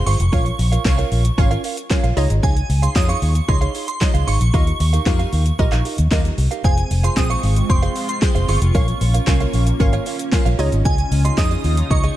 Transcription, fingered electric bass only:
0.07 0.15 G1 medium
0.20 0.28 F1 loud
0.33 0.50 A#1 loud
0.59 0.76 A#1 loud
0.85 1.02 C2 loud
1.12 1.29 A#1 medium
1.38 1.55 G#1 loud
2.04 2.12 A#1 medium
2.17 2.25 C#2 loud
2.30 2.39 G#1 loud
2.70 2.87 C#2 loud
2.96 3.13 F2 loud
3.22 3.39 D#2 medium
3.49 3.66 C#2 loud
4.14 4.23 C#2 medium
4.28 4.36 G#1 loud
4.41 4.49 A#1 medium
4.54 4.71 D#2 loud
4.80 4.97 D#2 loud
5.06 5.23 F2 loud
5.33 5.50 D#2 loud
5.59 5.68 A#1 medium
5.72 5.81 A#1 medium
5.99 6.07 D#2 loud
6.12 6.29 D#2 medium
6.38 6.47 C2 loud
6.64 6.81 F1 loud
6.91 7.08 F1 loud
7.17 7.34 A#1 loud
7.43 7.60 G#1 loud
7.70 7.87 F1 loud
8.35 8.44 F1 medium
8.49 8.57 G1 loud
8.62 8.70 F1 medium
8.75 8.92 A#1 loud
9.01 9.18 A#1 loud
9.27 9.44 C2 loud
9.54 9.71 A#1 medium
9.80 9.97 G#1 loud
10.46 10.54 A#1 medium
10.59 10.68 C#2 loud
10.72 10.81 G#1 loud
10.85 11.02 C#2 loud
11.12 11.29 C#2 loud
11.38 11.55 F2 loud
11.64 11.81 D#2 medium
11.91 12.08 C#2 loud

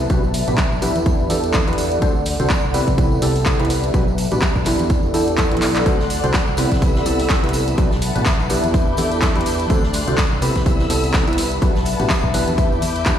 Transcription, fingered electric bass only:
0.10 0.42 B1 medium
0.48 0.55 A1 medium
0.72 0.88 B1 medium
0.96 1.25 E2 medium
1.30 1.62 E2 medium
1.68 1.97 E2 loud
2.02 2.34 D2 loud
2.40 2.47 C2 loud
2.64 2.80 C2 medium
2.88 3.17 C2 loud
3.22 3.54 C2 medium
3.60 3.89 C2 loud
3.94 4.26 B1 loud
4.32 4.39 A1 loud
4.56 4.72 B1 medium
4.80 5.09 E2 loud
5.14 5.53 E2 medium
5.52 5.82 B1 medium
5.86 6.18 D2 medium
6.24 6.31 C2 loud
6.48 6.64 C2 medium
6.72 7.01 C2 medium
7.06 7.38 C2 medium
7.44 7.74 C2 loud
7.78 8.10 B1 loud
8.16 8.23 A1 loud
8.40 8.56 B1 medium
8.64 8.93 E2 loud
8.98 9.30 E2 medium
9.36 9.65 E2 loud
9.70 10.02 D2 medium
10.08 10.15 C2 loud
10.32 10.48 C2 medium
10.56 10.85 C2 loud
10.90 11.22 C2 medium
11.28 11.57 C2 loud
11.62 11.94 B1 medium
12.00 12.07 A1 loud
12.24 12.40 B1 medium
12.48 12.77 E2 loud
12.82 13.14 E2 medium

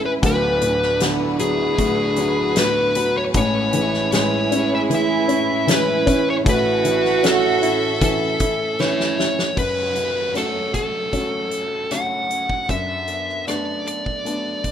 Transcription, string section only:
0.00 0.20 A2 medium
0.00 0.20 E3 medium
0.00 0.20 C#4 medium
0.00 6.43 B4 medium
0.00 0.20 G#5 medium
0.22 3.31 D2 medium
0.22 3.31 D3 medium
0.22 3.31 E4 medium
0.22 3.31 F#4 medium
3.35 9.54 A2 medium
3.35 9.54 E3 medium
3.35 9.54 C#4 medium
3.35 6.43 G#4 medium
6.47 9.55 A4 medium
6.47 9.56 E5 medium

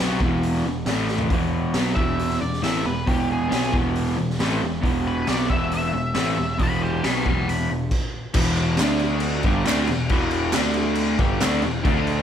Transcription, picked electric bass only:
0.00 0.19 B1 medium
0.21 0.62 E1 loud
0.66 0.85 E1 medium
0.85 1.27 A1 medium
1.31 1.72 E1 medium
1.75 1.95 B1 medium
1.96 2.38 E1 medium
2.41 2.61 E1 medium
2.63 2.84 A1 medium
2.85 3.06 E1 medium
3.08 3.49 E1 medium
3.51 3.72 B1 medium
3.73 4.14 E1 loud
4.19 4.39 E1 medium
4.40 4.60 A1 medium
4.62 4.82 E1 medium
4.83 5.24 E1 medium
5.28 5.48 B1 medium
5.50 5.91 E1 loud
5.93 6.14 E1 medium
6.15 6.36 A1 medium
6.38 6.59 E1 medium
6.60 7.01 E1 medium
7.04 7.24 B1 medium
7.26 7.67 E1 loud
7.70 7.90 E1 medium
8.35 8.76 E1 medium
8.80 9.41 D2 medium
9.44 9.65 G1 medium
9.67 9.88 D2 medium
9.89 10.09 E1 medium
10.11 10.52 E1 loud
10.54 11.16 D2 medium
11.19 11.40 G1 medium
11.41 11.62 D2 loud
11.63 11.84 E1 medium
11.85 12.22 D2 loud

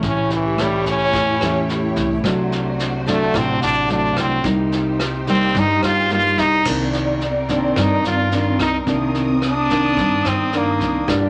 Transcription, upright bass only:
0.03 1.09 C2 medium
1.13 1.39 E2 loud
1.41 1.92 E2 medium
1.96 2.22 C2 medium
2.24 3.30 C2 medium
3.34 3.60 A1 loud
3.62 4.13 A1 medium
4.17 4.43 C2 medium
4.44 5.51 C2 medium
5.55 5.81 G2 loud
5.83 6.34 G2 medium
6.38 6.63 C2 medium
6.66 7.72 C2 medium
7.76 8.02 G2 loud
8.03 8.55 G2 medium
8.59 8.85 C2 medium
8.87 9.94 C2 medium
9.97 10.23 G2 loud
10.25 10.77 G2 medium
10.80 11.06 C2 medium
11.08 11.29 C2 medium

